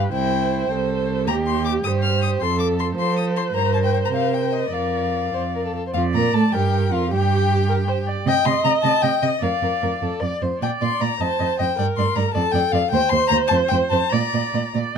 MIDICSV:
0, 0, Header, 1, 5, 480
1, 0, Start_track
1, 0, Key_signature, -2, "major"
1, 0, Tempo, 379267
1, 167, Time_signature, 6, 3, 24, 8
1, 4965, Tempo, 406229
1, 7365, Tempo, 387097
1, 16485, Tempo, 408441
1, 18448, End_track
2, 0, Start_track
2, 0, Title_t, "Violin"
2, 0, Program_c, 0, 40
2, 157, Note_on_c, 0, 79, 65
2, 874, Note_off_c, 0, 79, 0
2, 1614, Note_on_c, 0, 82, 82
2, 1712, Note_off_c, 0, 82, 0
2, 1861, Note_on_c, 0, 84, 64
2, 2083, Note_off_c, 0, 84, 0
2, 2091, Note_on_c, 0, 86, 75
2, 2189, Note_off_c, 0, 86, 0
2, 2326, Note_on_c, 0, 87, 82
2, 2425, Note_off_c, 0, 87, 0
2, 2570, Note_on_c, 0, 89, 76
2, 2806, Note_off_c, 0, 89, 0
2, 2813, Note_on_c, 0, 87, 73
2, 2909, Note_off_c, 0, 87, 0
2, 3047, Note_on_c, 0, 84, 76
2, 3276, Note_off_c, 0, 84, 0
2, 3283, Note_on_c, 0, 86, 69
2, 3380, Note_off_c, 0, 86, 0
2, 3533, Note_on_c, 0, 84, 70
2, 3627, Note_off_c, 0, 84, 0
2, 3785, Note_on_c, 0, 84, 72
2, 4004, Note_off_c, 0, 84, 0
2, 4012, Note_on_c, 0, 87, 70
2, 4105, Note_off_c, 0, 87, 0
2, 4259, Note_on_c, 0, 84, 68
2, 4350, Note_off_c, 0, 84, 0
2, 4489, Note_on_c, 0, 82, 70
2, 4719, Note_off_c, 0, 82, 0
2, 4734, Note_on_c, 0, 81, 58
2, 4780, Note_off_c, 0, 81, 0
2, 4865, Note_on_c, 0, 79, 59
2, 4974, Note_off_c, 0, 79, 0
2, 4981, Note_on_c, 0, 79, 62
2, 5025, Note_off_c, 0, 79, 0
2, 5113, Note_on_c, 0, 82, 59
2, 5153, Note_off_c, 0, 82, 0
2, 5221, Note_on_c, 0, 77, 65
2, 5454, Note_on_c, 0, 79, 53
2, 5472, Note_off_c, 0, 77, 0
2, 5680, Note_on_c, 0, 75, 53
2, 5698, Note_off_c, 0, 79, 0
2, 5924, Note_on_c, 0, 77, 56
2, 5941, Note_off_c, 0, 75, 0
2, 7132, Note_off_c, 0, 77, 0
2, 7345, Note_on_c, 0, 77, 67
2, 7443, Note_off_c, 0, 77, 0
2, 7599, Note_on_c, 0, 82, 68
2, 7841, Note_on_c, 0, 81, 68
2, 7859, Note_off_c, 0, 82, 0
2, 8075, Note_on_c, 0, 79, 70
2, 8094, Note_off_c, 0, 81, 0
2, 8584, Note_on_c, 0, 77, 66
2, 8603, Note_off_c, 0, 79, 0
2, 8816, Note_off_c, 0, 77, 0
2, 8830, Note_on_c, 0, 79, 75
2, 9987, Note_off_c, 0, 79, 0
2, 10250, Note_on_c, 0, 79, 93
2, 10465, Note_on_c, 0, 84, 87
2, 10483, Note_off_c, 0, 79, 0
2, 10691, Note_off_c, 0, 84, 0
2, 10699, Note_on_c, 0, 82, 86
2, 10795, Note_off_c, 0, 82, 0
2, 10919, Note_on_c, 0, 81, 97
2, 11170, Note_on_c, 0, 79, 84
2, 11188, Note_off_c, 0, 81, 0
2, 11421, Note_on_c, 0, 75, 71
2, 11440, Note_off_c, 0, 79, 0
2, 11665, Note_on_c, 0, 77, 65
2, 11683, Note_off_c, 0, 75, 0
2, 12404, Note_off_c, 0, 77, 0
2, 13156, Note_on_c, 0, 79, 71
2, 13252, Note_off_c, 0, 79, 0
2, 13400, Note_on_c, 0, 84, 69
2, 13641, Note_on_c, 0, 82, 68
2, 13659, Note_off_c, 0, 84, 0
2, 13879, Note_on_c, 0, 81, 78
2, 13898, Note_off_c, 0, 82, 0
2, 14350, Note_off_c, 0, 81, 0
2, 14357, Note_on_c, 0, 79, 72
2, 14582, Note_off_c, 0, 79, 0
2, 14589, Note_on_c, 0, 79, 79
2, 14684, Note_off_c, 0, 79, 0
2, 14825, Note_on_c, 0, 84, 75
2, 15054, Note_on_c, 0, 82, 70
2, 15073, Note_off_c, 0, 84, 0
2, 15272, Note_off_c, 0, 82, 0
2, 15279, Note_on_c, 0, 81, 87
2, 15503, Note_on_c, 0, 79, 86
2, 15522, Note_off_c, 0, 81, 0
2, 15757, Note_on_c, 0, 77, 86
2, 15775, Note_off_c, 0, 79, 0
2, 15978, Note_off_c, 0, 77, 0
2, 15985, Note_on_c, 0, 79, 92
2, 16218, Note_on_c, 0, 84, 95
2, 16236, Note_off_c, 0, 79, 0
2, 16443, Note_off_c, 0, 84, 0
2, 16450, Note_on_c, 0, 82, 99
2, 16546, Note_off_c, 0, 82, 0
2, 16683, Note_on_c, 0, 81, 94
2, 16777, Note_off_c, 0, 81, 0
2, 16925, Note_on_c, 0, 79, 84
2, 17019, Note_off_c, 0, 79, 0
2, 17184, Note_on_c, 0, 81, 85
2, 17411, Note_on_c, 0, 82, 79
2, 17429, Note_off_c, 0, 81, 0
2, 18152, Note_off_c, 0, 82, 0
2, 18448, End_track
3, 0, Start_track
3, 0, Title_t, "Viola"
3, 0, Program_c, 1, 41
3, 0, Note_on_c, 1, 71, 56
3, 154, Note_off_c, 1, 71, 0
3, 171, Note_on_c, 1, 72, 67
3, 1592, Note_off_c, 1, 72, 0
3, 1618, Note_on_c, 1, 67, 59
3, 2358, Note_on_c, 1, 72, 63
3, 2377, Note_off_c, 1, 67, 0
3, 3066, Note_on_c, 1, 69, 62
3, 3085, Note_off_c, 1, 72, 0
3, 3759, Note_off_c, 1, 69, 0
3, 3767, Note_on_c, 1, 72, 69
3, 5873, Note_off_c, 1, 72, 0
3, 5906, Note_on_c, 1, 74, 47
3, 6979, Note_off_c, 1, 74, 0
3, 7364, Note_on_c, 1, 74, 58
3, 8089, Note_on_c, 1, 70, 56
3, 8107, Note_off_c, 1, 74, 0
3, 8798, Note_off_c, 1, 70, 0
3, 8805, Note_on_c, 1, 67, 61
3, 9507, Note_off_c, 1, 67, 0
3, 9516, Note_on_c, 1, 70, 67
3, 9613, Note_off_c, 1, 70, 0
3, 9748, Note_on_c, 1, 72, 66
3, 9846, Note_off_c, 1, 72, 0
3, 9995, Note_on_c, 1, 74, 71
3, 10236, Note_on_c, 1, 75, 87
3, 10255, Note_off_c, 1, 74, 0
3, 11671, Note_off_c, 1, 75, 0
3, 11676, Note_on_c, 1, 74, 61
3, 12756, Note_off_c, 1, 74, 0
3, 13148, Note_on_c, 1, 74, 64
3, 13827, Note_off_c, 1, 74, 0
3, 13878, Note_on_c, 1, 72, 63
3, 14577, Note_off_c, 1, 72, 0
3, 14600, Note_on_c, 1, 70, 61
3, 15284, Note_off_c, 1, 70, 0
3, 15291, Note_on_c, 1, 69, 67
3, 15989, Note_off_c, 1, 69, 0
3, 16014, Note_on_c, 1, 72, 91
3, 17438, Note_on_c, 1, 74, 68
3, 17456, Note_off_c, 1, 72, 0
3, 18117, Note_off_c, 1, 74, 0
3, 18183, Note_on_c, 1, 74, 58
3, 18441, Note_off_c, 1, 74, 0
3, 18448, End_track
4, 0, Start_track
4, 0, Title_t, "Violin"
4, 0, Program_c, 2, 40
4, 0, Note_on_c, 2, 67, 47
4, 161, Note_off_c, 2, 67, 0
4, 169, Note_on_c, 2, 64, 49
4, 880, Note_off_c, 2, 64, 0
4, 909, Note_on_c, 2, 69, 50
4, 1624, Note_on_c, 2, 67, 53
4, 1642, Note_off_c, 2, 69, 0
4, 2332, Note_off_c, 2, 67, 0
4, 2340, Note_on_c, 2, 67, 52
4, 3056, Note_on_c, 2, 69, 51
4, 3075, Note_off_c, 2, 67, 0
4, 3759, Note_off_c, 2, 69, 0
4, 3767, Note_on_c, 2, 69, 51
4, 4461, Note_off_c, 2, 69, 0
4, 4469, Note_on_c, 2, 70, 50
4, 5147, Note_off_c, 2, 70, 0
4, 5188, Note_on_c, 2, 70, 46
4, 5888, Note_off_c, 2, 70, 0
4, 5895, Note_on_c, 2, 70, 42
4, 6617, Note_off_c, 2, 70, 0
4, 6632, Note_on_c, 2, 72, 47
4, 6726, Note_off_c, 2, 72, 0
4, 6880, Note_on_c, 2, 70, 44
4, 7001, Note_off_c, 2, 70, 0
4, 7011, Note_on_c, 2, 69, 41
4, 7120, Note_off_c, 2, 69, 0
4, 7127, Note_on_c, 2, 69, 43
4, 7245, Note_off_c, 2, 69, 0
4, 7265, Note_on_c, 2, 72, 35
4, 7308, Note_off_c, 2, 72, 0
4, 7376, Note_on_c, 2, 65, 60
4, 7471, Note_off_c, 2, 65, 0
4, 7621, Note_on_c, 2, 70, 56
4, 7846, Note_off_c, 2, 70, 0
4, 7854, Note_on_c, 2, 69, 59
4, 7948, Note_off_c, 2, 69, 0
4, 8087, Note_on_c, 2, 67, 63
4, 8557, Note_off_c, 2, 67, 0
4, 8565, Note_on_c, 2, 65, 60
4, 8801, Note_off_c, 2, 65, 0
4, 8819, Note_on_c, 2, 67, 67
4, 9982, Note_off_c, 2, 67, 0
4, 10244, Note_on_c, 2, 75, 62
4, 10336, Note_off_c, 2, 75, 0
4, 10475, Note_on_c, 2, 75, 55
4, 10568, Note_off_c, 2, 75, 0
4, 10706, Note_on_c, 2, 75, 54
4, 10801, Note_off_c, 2, 75, 0
4, 10941, Note_on_c, 2, 75, 56
4, 11037, Note_off_c, 2, 75, 0
4, 11179, Note_on_c, 2, 75, 51
4, 11276, Note_off_c, 2, 75, 0
4, 11416, Note_on_c, 2, 75, 49
4, 11516, Note_off_c, 2, 75, 0
4, 11658, Note_on_c, 2, 70, 50
4, 11757, Note_off_c, 2, 70, 0
4, 11915, Note_on_c, 2, 70, 42
4, 12014, Note_off_c, 2, 70, 0
4, 12158, Note_on_c, 2, 70, 43
4, 12257, Note_off_c, 2, 70, 0
4, 12408, Note_on_c, 2, 69, 56
4, 12635, Note_on_c, 2, 74, 61
4, 12653, Note_off_c, 2, 69, 0
4, 12899, Note_on_c, 2, 72, 49
4, 12917, Note_off_c, 2, 74, 0
4, 13148, Note_off_c, 2, 72, 0
4, 13154, Note_on_c, 2, 74, 50
4, 13251, Note_off_c, 2, 74, 0
4, 13389, Note_on_c, 2, 74, 42
4, 13487, Note_off_c, 2, 74, 0
4, 13622, Note_on_c, 2, 74, 48
4, 13721, Note_off_c, 2, 74, 0
4, 13874, Note_on_c, 2, 75, 45
4, 13970, Note_off_c, 2, 75, 0
4, 14108, Note_on_c, 2, 75, 47
4, 14205, Note_off_c, 2, 75, 0
4, 14346, Note_on_c, 2, 75, 45
4, 14443, Note_off_c, 2, 75, 0
4, 14591, Note_on_c, 2, 74, 53
4, 14685, Note_off_c, 2, 74, 0
4, 14840, Note_on_c, 2, 74, 45
4, 14931, Note_off_c, 2, 74, 0
4, 15057, Note_on_c, 2, 74, 51
4, 15151, Note_off_c, 2, 74, 0
4, 15287, Note_on_c, 2, 74, 58
4, 15382, Note_off_c, 2, 74, 0
4, 15536, Note_on_c, 2, 74, 54
4, 15629, Note_off_c, 2, 74, 0
4, 15782, Note_on_c, 2, 74, 57
4, 15874, Note_off_c, 2, 74, 0
4, 16011, Note_on_c, 2, 72, 67
4, 16106, Note_off_c, 2, 72, 0
4, 16249, Note_on_c, 2, 72, 56
4, 16344, Note_off_c, 2, 72, 0
4, 16483, Note_on_c, 2, 72, 64
4, 16575, Note_off_c, 2, 72, 0
4, 16720, Note_on_c, 2, 72, 62
4, 16812, Note_off_c, 2, 72, 0
4, 16952, Note_on_c, 2, 72, 57
4, 17046, Note_off_c, 2, 72, 0
4, 17200, Note_on_c, 2, 72, 58
4, 17294, Note_off_c, 2, 72, 0
4, 17453, Note_on_c, 2, 74, 52
4, 17547, Note_off_c, 2, 74, 0
4, 17691, Note_on_c, 2, 74, 44
4, 17785, Note_off_c, 2, 74, 0
4, 17932, Note_on_c, 2, 74, 47
4, 18026, Note_off_c, 2, 74, 0
4, 18176, Note_on_c, 2, 74, 44
4, 18270, Note_off_c, 2, 74, 0
4, 18448, End_track
5, 0, Start_track
5, 0, Title_t, "Cello"
5, 0, Program_c, 3, 42
5, 0, Note_on_c, 3, 43, 53
5, 150, Note_off_c, 3, 43, 0
5, 171, Note_on_c, 3, 36, 56
5, 881, Note_off_c, 3, 36, 0
5, 896, Note_on_c, 3, 36, 56
5, 1611, Note_on_c, 3, 39, 63
5, 1630, Note_off_c, 3, 36, 0
5, 2329, Note_off_c, 3, 39, 0
5, 2336, Note_on_c, 3, 43, 57
5, 3038, Note_off_c, 3, 43, 0
5, 3056, Note_on_c, 3, 41, 58
5, 3745, Note_off_c, 3, 41, 0
5, 3753, Note_on_c, 3, 53, 53
5, 4457, Note_off_c, 3, 53, 0
5, 4477, Note_on_c, 3, 43, 54
5, 5151, Note_off_c, 3, 43, 0
5, 5183, Note_on_c, 3, 48, 44
5, 5892, Note_off_c, 3, 48, 0
5, 5903, Note_on_c, 3, 41, 44
5, 6621, Note_off_c, 3, 41, 0
5, 6639, Note_on_c, 3, 41, 39
5, 7116, Note_off_c, 3, 41, 0
5, 7353, Note_on_c, 3, 41, 63
5, 7607, Note_on_c, 3, 46, 61
5, 7626, Note_off_c, 3, 41, 0
5, 7823, Note_off_c, 3, 46, 0
5, 7830, Note_on_c, 3, 45, 59
5, 7929, Note_off_c, 3, 45, 0
5, 8066, Note_on_c, 3, 43, 59
5, 8548, Note_on_c, 3, 41, 58
5, 8566, Note_off_c, 3, 43, 0
5, 8804, Note_on_c, 3, 43, 67
5, 8823, Note_off_c, 3, 41, 0
5, 9998, Note_off_c, 3, 43, 0
5, 10225, Note_on_c, 3, 48, 70
5, 10321, Note_off_c, 3, 48, 0
5, 10466, Note_on_c, 3, 48, 60
5, 10561, Note_off_c, 3, 48, 0
5, 10701, Note_on_c, 3, 48, 62
5, 10797, Note_off_c, 3, 48, 0
5, 10937, Note_on_c, 3, 48, 65
5, 11034, Note_off_c, 3, 48, 0
5, 11177, Note_on_c, 3, 48, 56
5, 11275, Note_off_c, 3, 48, 0
5, 11419, Note_on_c, 3, 48, 53
5, 11518, Note_off_c, 3, 48, 0
5, 11665, Note_on_c, 3, 41, 58
5, 11764, Note_off_c, 3, 41, 0
5, 11911, Note_on_c, 3, 41, 49
5, 12010, Note_off_c, 3, 41, 0
5, 12166, Note_on_c, 3, 41, 48
5, 12263, Note_off_c, 3, 41, 0
5, 12407, Note_on_c, 3, 41, 49
5, 12505, Note_off_c, 3, 41, 0
5, 12652, Note_on_c, 3, 41, 47
5, 12752, Note_off_c, 3, 41, 0
5, 12907, Note_on_c, 3, 41, 46
5, 13005, Note_off_c, 3, 41, 0
5, 13146, Note_on_c, 3, 46, 58
5, 13244, Note_off_c, 3, 46, 0
5, 13393, Note_on_c, 3, 46, 51
5, 13490, Note_off_c, 3, 46, 0
5, 13635, Note_on_c, 3, 46, 50
5, 13731, Note_off_c, 3, 46, 0
5, 13873, Note_on_c, 3, 41, 55
5, 13969, Note_off_c, 3, 41, 0
5, 14118, Note_on_c, 3, 41, 54
5, 14212, Note_off_c, 3, 41, 0
5, 14367, Note_on_c, 3, 41, 52
5, 14459, Note_off_c, 3, 41, 0
5, 14592, Note_on_c, 3, 43, 61
5, 14686, Note_off_c, 3, 43, 0
5, 14832, Note_on_c, 3, 43, 57
5, 14925, Note_off_c, 3, 43, 0
5, 15061, Note_on_c, 3, 43, 60
5, 15154, Note_off_c, 3, 43, 0
5, 15300, Note_on_c, 3, 41, 66
5, 15393, Note_off_c, 3, 41, 0
5, 15521, Note_on_c, 3, 41, 62
5, 15617, Note_off_c, 3, 41, 0
5, 15766, Note_on_c, 3, 41, 62
5, 15861, Note_off_c, 3, 41, 0
5, 16007, Note_on_c, 3, 39, 74
5, 16102, Note_off_c, 3, 39, 0
5, 16254, Note_on_c, 3, 39, 66
5, 16348, Note_off_c, 3, 39, 0
5, 16489, Note_on_c, 3, 39, 70
5, 16580, Note_off_c, 3, 39, 0
5, 16720, Note_on_c, 3, 41, 70
5, 16812, Note_off_c, 3, 41, 0
5, 16961, Note_on_c, 3, 41, 67
5, 17054, Note_off_c, 3, 41, 0
5, 17202, Note_on_c, 3, 41, 58
5, 17296, Note_off_c, 3, 41, 0
5, 17445, Note_on_c, 3, 46, 63
5, 17539, Note_off_c, 3, 46, 0
5, 17695, Note_on_c, 3, 46, 53
5, 17788, Note_off_c, 3, 46, 0
5, 17928, Note_on_c, 3, 46, 50
5, 18022, Note_off_c, 3, 46, 0
5, 18173, Note_on_c, 3, 46, 53
5, 18267, Note_off_c, 3, 46, 0
5, 18448, End_track
0, 0, End_of_file